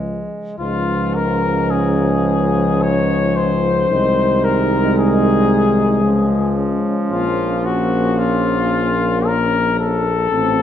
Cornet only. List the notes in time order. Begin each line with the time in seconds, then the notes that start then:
0.59 F4
1.15 A#4
1.70 G#4
2.82 C#5
3.36 C5
4.44 A#4
4.98 G#4
7.10 F4
7.65 F#4
8.18 F4
9.27 A#4
9.79 A4